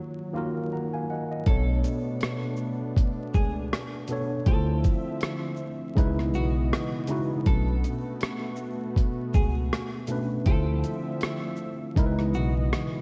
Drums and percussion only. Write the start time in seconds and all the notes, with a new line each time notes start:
1.46 kick, closed hi-hat
1.84 closed hi-hat, shaker
2.21 cross-stick, closed hi-hat
2.57 shaker
2.97 kick, closed hi-hat
3.34 kick, shaker
3.73 cross-stick, closed hi-hat
4.08 closed hi-hat, shaker
4.46 kick, closed hi-hat
4.84 kick, closed hi-hat, shaker
5.21 cross-stick, closed hi-hat
5.57 shaker
5.97 kick, closed hi-hat
6.19 cross-stick
6.34 shaker
6.73 cross-stick, closed hi-hat
7.07 closed hi-hat, shaker
7.46 kick, closed hi-hat
7.84 closed hi-hat, shaker
8.21 cross-stick, closed hi-hat
8.56 shaker
8.96 kick, closed hi-hat
9.34 kick, shaker
9.73 cross-stick, closed hi-hat
10.07 closed hi-hat, shaker
10.46 kick, closed hi-hat
10.84 closed hi-hat, shaker
11.21 cross-stick, closed hi-hat
11.56 shaker
11.96 kick, closed hi-hat
12.19 cross-stick
12.34 shaker
12.73 cross-stick, closed hi-hat